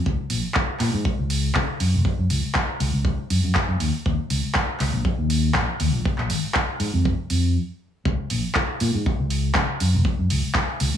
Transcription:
0.06 C#2, kick
0.30 A#1, open hi-hat
0.54 kick, clap
0.80 A#2, clap, open hi-hat
0.93 G#2
1.05 muted fingered electric bass stroke, kick
1.19 C#2
1.30 open hi-hat
1.55 C#3, kick, clap
1.80 F#2, open hi-hat
1.94 F#1
2.05 muted fingered electric bass stroke, kick
2.19 F#2
2.30 C#2, open hi-hat
2.55 kick, clap
2.80 C#2, open hi-hat
2.93 C#2
3.05 kick
3.30 F#2, open hi-hat
3.44 F#2
3.55 kick, clap
3.69 F#2
3.80 D#2, open hi-hat
4.06 D#2, kick
4.30 C#2, open hi-hat
4.55 kick, clap
4.80 C#2, clap, open hi-hat
4.93 A#1
5.05 muted fingered electric bass stroke, kick
5.19 D#2
5.30 open hi-hat
5.54 A#1, kick, clap
5.80 D#2, open hi-hat
5.94 A#1
6.05 muted fingered electric bass stroke, kick
6.18 A#1, clap
6.30 G#1, open hi-hat
6.54 kick, clap
6.80 G#2, open hi-hat
6.94 F2
7.05 kick
7.30 F2, open hi-hat
8.05 C#2, kick
8.30 A#1, open hi-hat
8.55 kick, clap
8.80 A#2, open hi-hat
8.94 G#2
9.06 muted fingered electric bass stroke, kick
9.20 C#2
9.30 open hi-hat
9.55 C#3, kick, clap
9.80 F#2, open hi-hat
9.94 F#1
10.05 muted fingered electric bass stroke, kick
10.19 F#2
10.30 C#2, open hi-hat
10.55 kick, clap
10.80 C#2, open hi-hat

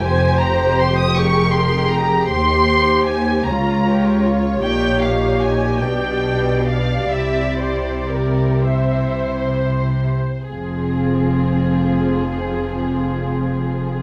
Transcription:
Already playing: G4
0.03 F1 F2 C5 G#5
0.41 A#5
0.79 C6
0.99 D#6
1.17 G#4 A#4 C#6
1.54 C6
1.92 A#5
2.30 D#2 G4 C5 C6
3.08 G#5
3.46 C#2 F4 C#5 A#5
3.87 G4
4.24 F4
4.62 A#1 A#2 D#4 G4 G5
5.02 F5
5.43 G#5
5.82 B1 B2 D4 D5 G5
6.69 F5
7.12 C2 C3 E4 G4 E5
7.59 C5
8.09 A#4
8.63 E4 C5 E5
10.50 F1 F2 F3 C4 F4 G#4

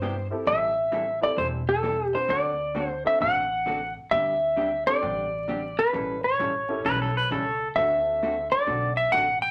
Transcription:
Already playing: G2 C5
0.02 C3 G3 B3 E4 G4
0.30 C4 E4 G4 A4
0.47 A1 E3 G3 C4 E4 A4 E5
0.92 E3 G3 C4 E4 A4
1.21 C4 E4 G4 A4 D5
1.37 E1 E3 G3 C4 E4 A4 C5
1.69 A4
1.83 E3 G3 C4 E4 A4
2.13 C4 D4 F#4 B4 C5
2.28 D2 D3 A3 C4 F#4 A4 D5
2.75 D3 A3 C4 F#4 A4
2.88 C5
3.04 C4 D4 F#4 A4 E5
3.20 A1 D3 A3 C4 F#4 A4 F#5
3.66 D3 A3 C4 F#4 A4
4.11 D2 D3 G3 C4 D4 G4 E5
4.56 D3 G3 C4 D4 G4
4.87 C4 D4 G4 A4 D5
5.02 A1 D3 G3 C4 D4 G4
5.48 D3 G3 C4 D4 G4
5.79 B4
5.93 A1 E3 G3 C#4 E4 A4
6.24 C#5
6.39 A1 E3 G3 C#4 E4 A4
6.69 C#4 E4 G4 A4
6.85 B1 E3 G3 C#4 E4 A4 B4
7.02 A4
7.17 B4
7.31 C#2 E3 G3 C#4 E4 A4
7.75 D2 D3 A3 C4 D4 F#4 A4 E5
8.23 D3 A3 C4 F#4 A4
8.52 D5
8.67 B1 D3 A3 C4 F#4 A4
8.97 E5
9.12 A1 D3 A3 C4 F#4 A4 F#5
9.42 G5

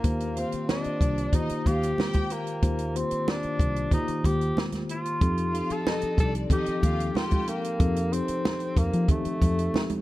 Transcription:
Already playing: A#3
0.04 D#2 D#3 A#3 F4 G4 C5, kick, closed hi-hat, muted conga
0.20 closed hi-hat
0.36 D#3 A#3 C4 F4 G4 C5 F5, closed hi-hat
0.52 muted fingered electric bass stroke, closed hi-hat
0.69 C4 D4 D#5, snare, high conga
0.84 muted fingered electric bass stroke, closed hi-hat
1.01 C2 D4 D5, kick, closed hi-hat
1.18 closed hi-hat
1.33 D#3 A#3 D#4 F4 G4 C5 D#5, kick, closed hi-hat, low conga
1.49 muted fingered electric bass stroke, closed hi-hat
1.66 D#2 F4 G4 F5, kick, closed hi-hat, muted conga
1.83 closed hi-hat
1.98 G4 G5, snare, high conga
2.13 kick, closed hi-hat, high conga
2.30 A#3, closed hi-hat
2.47 closed hi-hat
2.62 D#2 D#3 A#3 F4 G4 C5, kick, closed hi-hat, muted conga
2.79 closed hi-hat
2.95 D#3 A#3 C4 F4 G4 C5, closed hi-hat
3.11 muted fingered electric bass stroke, closed hi-hat
3.28 D4, snare, high conga
3.43 muted fingered electric bass stroke, closed hi-hat
3.59 C2, kick, closed hi-hat
3.76 closed hi-hat
3.91 D#3 A#3 D#4 F4 G4 C5, kick, closed hi-hat, low conga
4.08 muted fingered electric bass stroke, closed hi-hat
4.24 D#2 G4, kick, closed hi-hat, muted conga
4.41 closed hi-hat
4.57 snare, high conga
4.72 snare, closed hi-hat, high conga
4.89 F4, closed hi-hat
5.05 closed hi-hat
5.21 F2 F3 C4 D#4 G4 A4, kick, closed hi-hat, muted conga
5.38 closed hi-hat
5.53 F3 C4 D#4 F4 G4 A4 F5, closed hi-hat
5.70 A4, muted fingered electric bass stroke, closed hi-hat
5.86 D#4 D#5, snare, high conga
6.01 muted fingered electric bass stroke, closed hi-hat
6.18 C2 D4 A4 D5, kick, closed hi-hat
6.35 closed hi-hat
6.50 F3 C4 D#4 G4 A4 D#5, kick, closed hi-hat, low conga
6.66 muted fingered electric bass stroke, closed hi-hat
6.83 D#2 F4 F5, kick, closed hi-hat, muted conga
7.00 closed hi-hat
7.15 F4 G4 G5, snare, high conga
7.31 kick, closed hi-hat, high conga
7.47 A#3, closed hi-hat
7.64 closed hi-hat
7.79 F2 F3 C4 D#4 G4 A4, kick, closed hi-hat, muted conga
7.96 closed hi-hat
8.12 F3 C4 D#4 G4 C5, closed hi-hat
8.28 muted fingered electric bass stroke, closed hi-hat
8.45 snare, high conga
8.60 closed hi-hat
8.77 F2 A#3, kick, closed hi-hat, muted conga
8.93 F3, closed hi-hat
9.08 F3 A3 C4 D#4 G4 A4, kick, closed hi-hat, low conga
9.25 muted fingered electric bass stroke, closed hi-hat
9.42 F2, kick, closed hi-hat, muted conga
9.59 closed hi-hat
9.74 snare, high conga
9.89 closed hi-hat, high conga

